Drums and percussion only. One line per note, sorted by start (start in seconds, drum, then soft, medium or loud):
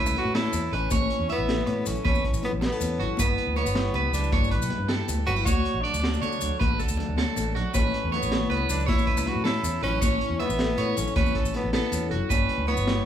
0.06 maracas medium
0.15 closed hi-hat soft
0.15 muted conga medium
0.15 low conga medium
0.35 snare medium
0.35 closed hi-hat medium
0.35 high conga medium
0.53 closed hi-hat soft
0.53 muted conga medium
0.53 low conga soft
0.53 maracas medium
0.73 closed hi-hat soft
0.91 kick medium
0.91 closed hi-hat medium
0.91 muted conga medium
0.91 high conga medium
0.91 maracas medium
1.10 closed hi-hat medium
1.29 closed hi-hat medium
1.29 low conga medium
1.48 snare medium
1.48 closed hi-hat medium
1.48 high conga medium
1.67 closed hi-hat medium
1.67 muted conga medium
1.86 closed hi-hat medium
1.86 low conga medium
1.86 maracas medium
1.95 maracas soft
2.05 kick medium
2.05 closed hi-hat medium
2.05 muted conga medium
2.05 high conga medium
2.15 maracas soft
2.24 kick medium
2.24 closed hi-hat soft
2.33 low conga soft
2.33 maracas medium
2.43 closed hi-hat soft
2.43 muted conga medium
2.43 low conga medium
2.62 snare medium
2.62 closed hi-hat medium
2.62 high conga medium
2.80 closed hi-hat soft
2.80 muted conga medium
2.80 low conga soft
2.80 maracas loud
2.98 closed hi-hat soft
2.98 low conga medium
3.17 kick medium
3.17 closed hi-hat medium
3.17 muted conga medium
3.17 high conga medium
3.17 maracas loud
3.38 closed hi-hat soft
3.56 closed hi-hat soft
3.56 muted conga medium
3.56 low conga medium
3.66 maracas medium
3.75 snare medium
3.75 closed hi-hat medium
3.75 high conga medium
3.94 closed hi-hat soft
3.94 muted conga medium
4.13 snare soft
4.13 closed hi-hat medium
4.13 low conga medium
4.13 maracas medium
4.23 maracas soft
4.32 kick medium
4.32 closed hi-hat medium
4.32 muted conga medium
4.32 high conga medium
4.44 maracas soft
4.51 kick medium
4.51 closed hi-hat medium
4.61 low conga soft
4.61 maracas medium
4.70 closed hi-hat soft
4.70 muted conga medium
4.70 low conga medium
4.89 snare medium
4.89 closed hi-hat medium
4.89 high conga medium
5.08 closed hi-hat soft
5.08 muted conga medium
5.08 low conga soft
5.08 maracas medium
5.27 closed hi-hat soft
5.27 low conga medium
5.46 kick medium
5.46 closed hi-hat medium
5.46 muted conga medium
5.46 high conga medium
5.46 maracas medium
5.65 closed hi-hat soft
5.65 low conga soft
5.85 closed hi-hat soft
5.85 low conga medium
5.94 low conga soft
5.94 maracas medium
6.04 snare medium
6.04 closed hi-hat medium
6.04 high conga medium
6.14 maracas soft
6.23 closed hi-hat soft
6.23 muted conga medium
6.23 maracas soft
6.32 low conga soft
6.32 maracas soft
6.41 closed hi-hat soft
6.41 low conga medium
6.41 maracas medium
6.60 kick medium
6.60 closed hi-hat medium
6.60 muted conga medium
6.60 high conga medium
6.70 low conga soft
6.80 kick medium
6.80 closed hi-hat soft
6.80 maracas soft
6.88 maracas medium
6.97 closed hi-hat soft
6.97 muted conga loud
6.97 low conga loud
7.17 snare medium
7.17 closed hi-hat medium
7.17 high conga loud
7.17 low conga soft
7.36 closed hi-hat soft
7.36 muted conga loud
7.36 maracas medium
7.55 closed hi-hat soft
7.55 low conga loud
7.74 kick medium
7.74 closed hi-hat medium
7.74 muted conga loud
7.74 high conga medium
7.74 maracas medium
7.94 closed hi-hat medium
8.12 closed hi-hat soft
8.12 muted conga loud
8.12 low conga medium
8.23 maracas medium
8.31 snare medium
8.31 closed hi-hat medium
8.31 high conga loud
8.50 closed hi-hat soft
8.50 muted conga loud
8.69 closed hi-hat medium
8.69 low conga loud
8.69 maracas medium
8.80 maracas soft
8.88 kick medium
8.88 closed hi-hat medium
8.88 muted conga loud
8.88 high conga loud
8.98 maracas soft
9.07 kick medium
9.07 closed hi-hat soft
9.17 low conga soft
9.17 maracas medium
9.26 closed hi-hat soft
9.26 muted conga loud
9.26 low conga loud
9.45 snare medium
9.45 closed hi-hat medium
9.45 high conga loud
9.64 closed hi-hat soft
9.64 low conga soft
9.64 maracas medium
9.82 closed hi-hat soft
9.82 low conga loud
10.02 kick medium
10.02 closed hi-hat medium
10.02 muted conga loud
10.02 high conga loud
10.02 maracas medium
10.21 closed hi-hat soft
10.40 closed hi-hat soft
10.40 muted conga loud
10.40 low conga medium
10.50 maracas medium
10.59 snare medium
10.59 closed hi-hat medium
10.59 high conga medium
10.78 closed hi-hat medium
10.78 muted conga medium
10.97 closed hi-hat medium
10.97 low conga medium
10.97 maracas medium
11.07 maracas soft
11.16 kick medium
11.16 closed hi-hat medium
11.16 muted conga medium
11.16 high conga medium
11.26 maracas soft
11.35 kick medium
11.35 closed hi-hat soft
11.44 low conga soft
11.44 maracas medium
11.54 closed hi-hat soft
11.54 muted conga medium
11.54 low conga medium
11.73 snare medium
11.73 closed hi-hat medium
11.73 high conga medium
11.92 closed hi-hat soft
11.92 muted conga medium
11.92 low conga soft
11.92 maracas medium
12.11 closed hi-hat soft
12.11 low conga medium
12.30 kick medium
12.30 closed hi-hat medium
12.30 muted conga medium
12.30 high conga medium
12.30 maracas medium
12.49 closed hi-hat soft
12.67 closed hi-hat soft
12.67 muted conga medium
12.67 low conga medium
12.77 maracas medium
12.85 snare medium
12.85 closed hi-hat medium
12.85 high conga medium